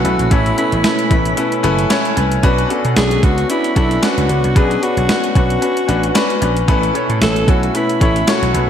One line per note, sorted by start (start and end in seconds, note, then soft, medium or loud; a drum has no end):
0.00 0.31 A2 medium
0.00 2.40 B2 medium
0.00 2.40 A3 medium
0.00 0.04 C#4 loud
0.00 2.40 C#4 medium
0.00 0.29 C#4 medium
0.00 0.04 E4 medium
0.00 0.33 F#4 medium
0.00 0.05 A4 medium
0.00 0.05 B4 loud
0.04 0.16 B1 medium
0.04 0.29 E4 medium
0.04 0.29 A4 medium
0.04 0.29 B4 medium
0.04 closed hi-hat medium
0.19 0.28 A#1 medium
0.19 closed hi-hat soft
0.31 0.51 A1 loud
0.31 1.07 A2 medium
0.31 0.55 C#4 medium
0.31 0.55 E4 medium
0.31 0.58 E4 medium
0.31 0.56 A4 medium
0.31 0.56 C#5 medium
0.31 kick loud
0.31 closed hi-hat medium
0.46 closed hi-hat soft
0.57 0.82 C#4 medium
0.57 0.82 E4 medium
0.57 1.60 E4 medium
0.57 0.82 A4 medium
0.57 0.82 B4 medium
0.57 closed hi-hat medium
0.72 0.81 A1 medium
0.72 closed hi-hat soft
0.84 1.08 C#4 medium
0.84 1.08 E4 medium
0.84 1.09 A4 medium
0.84 1.09 B4 medium
0.84 snare loud
0.84 closed hi-hat medium
0.99 closed hi-hat soft
1.10 1.31 A1 medium
1.10 1.35 C#4 medium
1.10 1.35 E4 medium
1.10 1.35 A4 medium
1.10 1.36 B4 medium
1.10 kick medium
1.10 closed hi-hat medium
1.25 closed hi-hat medium
1.37 1.61 C#4 medium
1.37 1.62 E4 medium
1.37 1.62 A4 medium
1.37 1.62 B4 medium
1.37 closed hi-hat medium
1.52 closed hi-hat soft
1.63 1.84 F#1 medium
1.63 1.88 C#4 loud
1.63 1.88 E4 loud
1.63 1.88 A4 medium
1.63 1.88 B4 loud
1.63 closed hi-hat medium
1.79 closed hi-hat soft
1.90 2.14 C#4 loud
1.90 2.15 E4 loud
1.90 2.15 A4 loud
1.90 2.15 C#5 loud
1.90 snare loud
1.90 closed hi-hat medium
2.05 closed hi-hat soft
2.16 2.37 C2 medium
2.16 2.41 C#4 medium
2.16 2.41 E4 medium
2.16 2.41 A4 medium
2.16 2.42 B4 medium
2.16 closed hi-hat medium
2.32 closed hi-hat medium
2.43 2.63 B1 loud
2.43 3.19 B2 medium
2.43 6.64 B3 medium
2.43 2.68 C#4 loud
2.43 6.64 C#4 medium
2.43 2.68 D4 loud
2.43 6.64 D4 medium
2.43 2.68 F#4 loud
2.43 2.68 B4 loud
2.43 kick loud
2.43 closed hi-hat medium
2.58 closed hi-hat soft
2.69 2.94 C#4 medium
2.69 2.94 D4 medium
2.69 2.94 F#4 medium
2.69 2.95 A4 medium
2.69 closed hi-hat medium
2.85 2.94 B2 medium
2.85 closed hi-hat soft
2.96 3.17 B1 medium
2.96 3.21 C#4 medium
2.96 3.21 D4 medium
2.96 3.21 F#4 medium
2.96 3.25 G#4 loud
2.96 3.21 A4 medium
2.96 snare loud
2.96 closed hi-hat medium
3.11 closed hi-hat soft
3.22 3.43 C#2 medium
3.22 3.47 C#4 medium
3.22 3.47 D4 medium
3.22 3.48 F#4 medium
3.22 3.50 F#4 medium
3.22 3.48 B4 medium
3.22 kick medium
3.22 closed hi-hat medium
3.38 closed hi-hat medium
3.49 3.74 C#4 medium
3.49 3.74 D4 medium
3.49 3.75 E4 medium
3.49 3.74 F#4 medium
3.49 3.74 B4 medium
3.49 closed hi-hat medium
3.64 closed hi-hat soft
3.75 3.96 B1 medium
3.75 4.00 C#4 medium
3.75 4.00 D4 medium
3.75 4.05 E4 medium
3.75 4.01 F#4 medium
3.75 4.01 A4 medium
3.75 kick medium
3.75 closed hi-hat medium
3.91 closed hi-hat medium
4.02 4.27 C#4 medium
4.02 4.27 D4 medium
4.02 4.27 F#4 medium
4.02 4.58 F#4 medium
4.02 4.27 B4 loud
4.02 snare loud
4.02 closed hi-hat medium
4.18 4.26 C#2 medium
4.18 closed hi-hat soft
4.29 4.40 C#2 medium
4.29 4.53 C#4 medium
4.29 4.53 D4 medium
4.29 4.54 F#4 medium
4.29 4.54 B4 medium
4.29 closed hi-hat medium
4.44 4.53 C2 medium
4.44 closed hi-hat soft
4.55 4.76 B1 medium
4.55 5.32 B2 medium
4.55 4.80 C#4 medium
4.55 4.80 D4 medium
4.55 4.80 F#4 medium
4.55 4.85 G#4 medium
4.55 4.81 B4 loud
4.55 kick loud
4.55 closed hi-hat medium
4.71 closed hi-hat soft
4.82 5.06 C#4 medium
4.82 5.07 D4 medium
4.82 5.07 F#4 medium
4.82 5.36 F#4 medium
4.82 5.07 B4 medium
4.82 closed hi-hat medium
4.97 5.06 B1 medium
4.97 closed hi-hat soft
5.08 5.33 C#4 medium
5.08 5.33 D4 medium
5.08 5.33 F#4 medium
5.08 5.34 B4 medium
5.08 snare loud
5.08 closed hi-hat medium
5.24 closed hi-hat soft
5.35 5.55 B1 medium
5.35 5.60 C#4 medium
5.35 5.60 D4 medium
5.35 5.60 F#4 medium
5.35 6.38 F#4 medium
5.35 5.60 B4 medium
5.35 kick medium
5.35 closed hi-hat medium
5.50 closed hi-hat medium
5.61 5.86 C#4 medium
5.61 5.86 D4 medium
5.61 5.87 F#4 medium
5.61 5.87 B4 medium
5.61 closed hi-hat medium
5.77 closed hi-hat soft
5.88 6.09 A1 medium
5.88 6.13 C#4 medium
5.88 6.13 D4 medium
5.88 6.13 F#4 medium
5.88 6.13 B4 medium
5.88 closed hi-hat medium
6.03 closed hi-hat soft
6.15 6.39 C#4 loud
6.15 6.39 D4 loud
6.15 6.40 F#4 loud
6.15 6.40 B4 loud
6.15 snare loud
6.15 closed hi-hat medium
6.30 closed hi-hat soft
6.41 6.62 A#1 medium
6.41 6.66 C#4 medium
6.41 6.66 D4 medium
6.41 6.66 F#4 medium
6.41 6.66 B4 medium
6.41 closed hi-hat medium
6.57 closed hi-hat soft
6.68 6.88 A1 medium
6.68 7.44 A2 medium
6.68 8.70 B2 medium
6.68 8.70 A3 medium
6.68 6.92 C#4 loud
6.68 8.70 C#4 medium
6.68 6.93 E4 medium
6.68 6.93 A4 medium
6.68 6.93 B4 loud
6.68 kick loud
6.68 closed hi-hat medium
6.83 closed hi-hat soft
6.94 7.19 C#4 medium
6.94 7.19 E4 medium
6.94 7.19 A4 medium
6.94 7.20 C#5 medium
6.94 closed hi-hat medium
7.09 7.18 A2 medium
7.09 closed hi-hat soft
7.21 7.41 A1 medium
7.21 7.45 C#4 medium
7.21 7.46 E4 medium
7.21 7.46 A4 medium
7.21 7.51 A4 loud
7.21 7.46 B4 medium
7.21 snare loud
7.21 closed hi-hat medium
7.36 closed hi-hat soft
7.47 7.68 B1 medium
7.47 7.72 C#4 medium
7.47 7.72 E4 medium
7.47 7.75 F#4 medium
7.47 7.72 A4 medium
7.47 7.73 C#5 medium
7.47 kick medium
7.47 closed hi-hat medium
7.63 closed hi-hat medium
7.74 7.99 C#4 medium
7.74 7.99 E4 medium
7.74 8.00 E4 medium
7.74 7.99 A4 medium
7.74 7.99 B4 medium
7.74 closed hi-hat medium
7.89 closed hi-hat soft
8.01 8.21 A1 medium
8.01 8.25 C#4 medium
8.01 8.25 E4 medium
8.01 8.31 E4 medium
8.01 8.26 A4 medium
8.01 8.26 C#5 loud
8.01 kick medium
8.01 closed hi-hat medium
8.16 closed hi-hat medium
8.27 8.52 C#4 medium
8.27 8.52 E4 medium
8.27 8.70 F#4 medium
8.27 8.52 A4 medium
8.27 8.52 C#5 loud
8.27 snare loud
8.27 closed hi-hat medium
8.42 8.51 B1 medium
8.42 closed hi-hat medium
8.54 8.65 B1 medium
8.54 8.70 C#4 medium
8.54 8.70 E4 medium
8.54 8.70 A4 medium
8.54 8.70 B4 medium
8.54 closed hi-hat medium